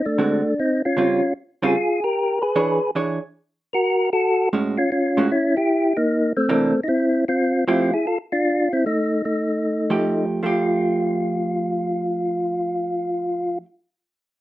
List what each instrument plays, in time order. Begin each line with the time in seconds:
0.05 tonewheel organ A3 D4
0.18 hollow-body jazz guitar D3 G#3 C4 F#4
0.59 tonewheel organ C4 D#4
0.85 tonewheel organ C#4 F4
0.97 hollow-body jazz guitar C#3 G3 C4 F4
1.62 hollow-body jazz guitar C#3 G3 C4 F4, tonewheel organ F4 G#4
2.04 tonewheel organ G4 A#4
2.42 tonewheel organ G#4 B4
2.56 hollow-body jazz guitar E3 D4 G#4 C#5
2.95 hollow-body jazz guitar E3 D4 G#4 C#5
3.73 tonewheel organ F#4 A#4
4.13 tonewheel organ F#4 A4
4.53 hollow-body jazz guitar A2 G#3 C#4 F#4
4.78 tonewheel organ C#4 F4
4.92 tonewheel organ C#4 F4
5.17 hollow-body jazz guitar A2 G#3 C#4 F#4
5.31 tonewheel organ C#4 E4
5.57 tonewheel organ E4 G4
5.97 tonewheel organ A#3 D#4
6.37 tonewheel organ A3 C4
6.49 hollow-body jazz guitar C3 E3 A#3 D4
6.84 tonewheel organ D#4
6.88 tonewheel organ C4 E4
7.28 tonewheel organ C4 F4
7.68 hollow-body jazz guitar F3 A3 E4 G4, tonewheel organ C4 F4
7.94 tonewheel organ E4 G#4
8.07 tonewheel organ F4 A4
8.32 tonewheel organ D4 F4
8.73 tonewheel organ C4 E4
8.86 tonewheel organ A3 D#4
9.25 tonewheel organ A3 D#4
9.90 hollow-body jazz guitar F3 A3 G4
10.43 hollow-body jazz guitar F3 A3 G4, tonewheel organ F4